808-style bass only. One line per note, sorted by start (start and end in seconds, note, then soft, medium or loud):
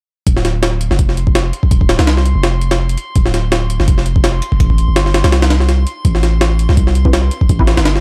0.27 0.89 D1 loud
0.91 1.52 F1 medium
1.71 1.98 D1 loud
1.99 2.34 C2 medium
2.35 2.96 F1 medium
3.16 3.78 D1 loud
3.80 4.41 F1 medium
4.60 4.87 A1 loud
4.88 5.23 G1 medium
5.24 5.85 C2 medium
6.05 6.67 A1 loud
6.69 7.30 C2 loud
7.49 7.76 A1 loud
7.77 8.00 G1 medium